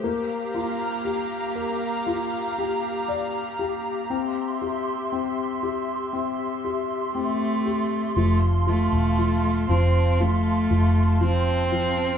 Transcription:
Already playing: G4
0.04 A#3 F5 A#5
0.54 F4
1.05 G4
1.56 A#4
2.07 F4
2.58 G4
3.08 D5
3.59 G4
4.10 C4 E5 C6
4.62 G4
5.12 C4
5.63 G4
6.13 C4
6.65 G4
7.15 A3 C4
7.65 G4
8.16 F1 F3 A3 F5 A5
8.67 F3 A3
8.92 E1
9.18 F3
9.69 F1 F3 C4
10.20 F3 A3
10.70 F1 F3
11.21 F3 C4
11.72 F3

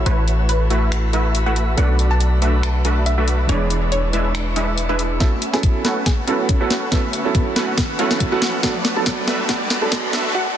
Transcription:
Already playing: E3 A3 B3 C#4 F#4
0.06 A1 A3 E4 F#4 B4 C#5, closed hi-hat
0.28 closed hi-hat
0.49 B4, closed hi-hat
0.70 A3 E4 F#4 B4 E5, closed hi-hat
0.92 finger snap, closed hi-hat
1.13 A3 E4 F#4 B4 E5, closed hi-hat
1.35 closed hi-hat
1.46 A3 E4 F#4 B4 E5 F#5
1.56 closed hi-hat
1.76 B1 F#3 A3 B3 D4 F#4 B4 D5 F#5, closed hi-hat
1.80 A4
1.99 closed hi-hat
2.11 A5
2.20 closed hi-hat
2.42 A3 D4 F#4 B4 E5, closed hi-hat
2.63 A5, finger snap, closed hi-hat
2.85 A3 D4 F#4 B4 E5, closed hi-hat
3.06 E5, closed hi-hat
3.18 A3 D4 F#4 B4 E5
3.28 closed hi-hat
3.47 E1 E3 G#3 B3 D4 E4 B4 C#5 D5, closed hi-hat
3.51 G#4
3.70 closed hi-hat
3.92 C#5, closed hi-hat
4.13 G#3 D4 E4 B4 E5, closed hi-hat
4.35 finger snap, closed hi-hat
4.56 G#3 D4 E4 B4 E5, closed hi-hat
4.78 closed hi-hat
4.89 G#3 D4 E4 B4 E5
4.99 closed hi-hat
5.19 F#3 A3 B3 C#4 E4 F#4 A4 E5, kick, snare, closed hi-hat, riser
5.42 closed hi-hat
5.53 F#3 B3 C#4 E4 G#4 A4 G#5, snare
5.63 kick, closed hi-hat
5.84 F#3 A3 B3 C#4 E4 F#4 A4 B4 F#5, snare, closed hi-hat
6.06 G#4 G#5, kick, snare, closed hi-hat
6.27 F#3 A3 B3 C#4 E4 F#4 A4 B4 F#5, closed hi-hat
6.49 C#4 C#5, kick, closed hi-hat
6.60 F#3 A3 B3 C#4 E4 F#4 A4 B4 F#5
6.70 snare, closed hi-hat
6.91 F#3 A3 B3 C#4 E4 F#4 A4 B4 E5, kick, snare, closed hi-hat
7.13 closed hi-hat
7.24 F#3 B3 C#4 E4 A4
7.35 B3 B4, kick, closed hi-hat
7.55 F#3 A3 B3 C#4 E4 F#4 A4 B4 F#5, snare, closed hi-hat
7.78 kick, snare, closed hi-hat
7.98 F#3 A3 B3 C#4 E4 F#4 A4 B4 F#5, closed hi-hat
8.11 snare
8.20 kick, closed hi-hat
8.31 F#3 A3 B3 C#4 E4 F#4 A4 B4 F#5
8.42 snare, closed hi-hat
8.62 F#3 A3 B3 D4 F#4 A4 B4 D5 F#5, kick, snare, closed hi-hat
8.85 snare, closed hi-hat
8.95 F#3 A3 B3 D4 A4 A5
9.06 kick, snare, closed hi-hat
9.26 F#3 A3 B3 D4 F#4 A4 B4 E5, snare, closed hi-hat
9.48 F#3 A3 B3 D4 F#4 A4 B4 D5 F#5, kick, snare, closed hi-hat
9.70 snare, closed hi-hat
9.81 F#3 A3 B3 D4 A4 A5
9.92 kick, snare, closed hi-hat
10.12 F#3 A3 B3 D4 F#4 A4 B4 E5, snare, closed hi-hat
10.35 F#4 F#5

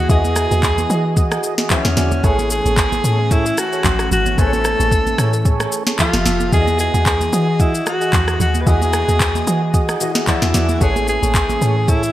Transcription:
Already playing: E3 F#4 G#4 D#5
0.09 E2 E3 E4 F#4 G#4 D#5, kick, shaker
0.25 high conga, shaker
0.36 cross-stick, shaker
0.51 E2 F#4 G#4 D#5, high conga, shaker
0.63 kick, clap, shaker
0.78 high conga, shaker
0.90 E3 F#4 G#4 D#5, shaker
1.16 F#4 G#4 D#5, kick, shaker
1.32 cross-stick, shaker
1.43 shaker
1.58 F#4 G#4 D#5, snare, shaker
1.70 D3 E3 C#4 E4 F#4 G#4 E5, kick, clap, low conga, shaker
1.85 E2, snare, shaker
1.97 E2 F#4 G#4 D5, snare, low conga, shaker
2.12 high conga, shaker
2.23 A1 E3 A3 C#4 E4 G#4 A4 B4 C#5, kick, shaker
2.39 high conga, shaker
2.50 G#4, shaker
2.65 A1 G#4 A4 C#5, high conga, shaker
2.77 kick, clap, shaker
2.92 high conga, shaker
3.04 A2 G#4 A4 C#5, shaker
3.31 E4 G#4 A4 C#5, kick, shaker
3.46 shaker
3.58 F#4, cross-stick, shaker
3.72 G#4 A4 C#5, shaker
3.84 A1, kick, clap, low conga, shaker
3.99 cross-stick, shaker
4.11 G#1 F#4, low conga, shaker
4.26 high conga, shaker
4.37 A1 A3 E4 G#4 A4 B4 C5 C#5 G#5, kick, shaker
4.47 C#5
4.53 high conga, shaker
4.65 cross-stick, shaker
4.79 A1 G#4 A4 C#5, high conga, shaker
4.92 kick, shaker
5.07 high conga, shaker
5.18 A2 G#4 A4 C#5, cross-stick, shaker
5.33 shaker
5.45 G#4 A4 C#5, kick, shaker
5.60 cross-stick, shaker
5.72 shaker
5.87 G#4 A4 C#5, snare, shaker
5.99 F3 F4 G4 A4 E5, kick, clap, low conga, shaker
6.13 F1, snare, shaker
6.25 F1 G4 A4 E5, snare, low conga, shaker
6.40 high conga, shaker
6.51 E2 E3 E4 F#4 G#4 D5 D#5, kick, shaker
6.61 D#5
6.67 high conga, shaker
6.79 G#4, shaker
6.94 E2 F#4 G#4 D#5, high conga, shaker
7.06 kick, clap, shaker
7.21 high conga, shaker
7.33 E3 F#4 G#4 D#5, shaker
7.59 E4 F#4 G#4 D#5, kick, shaker
7.75 shaker
7.86 F#4, cross-stick, shaker
8.01 F#4 G#4 D#5, shaker
8.13 E2, kick, clap, low conga, shaker
8.28 cross-stick, shaker
8.40 D#2 F#4, low conga, shaker
8.55 high conga, shaker
8.61 B4
8.66 E2 E3 E4 F#4 G#4 B4 D#5, kick, shaker
8.82 high conga, shaker
8.93 cross-stick, shaker
9.08 E2 F#4 G#4 D#5, high conga, shaker
9.20 kick, clap, shaker
9.35 high conga, shaker
9.47 E3 F#4 G#4 D#5, shaker
9.74 F#4 G#4 D#5, kick, shaker
9.89 cross-stick, shaker
10.00 E3 E4 F#4 G#4 D#5, shaker
10.15 F#4 G#4 D#5, snare, shaker
10.27 E3 D4 E4 F#4 G#4 D5, kick, clap, low conga, shaker
10.42 E2, snare, shaker
10.54 E2 F#4 G#4 D5, snare, low conga, shaker
10.69 high conga, shaker
10.80 A1 E3 A3 C#4 E4 G#4 A4 B4 C#5, kick, shaker
10.96 high conga, shaker
11.08 G#4, shaker
11.22 A1 G#4 A4 C#5, high conga, shaker
11.34 kick, clap, shaker
11.49 high conga, shaker
11.61 A2 G#4 A4 C#5, shaker
11.88 E4 G#4 A4 C#5, kick, shaker
12.03 shaker

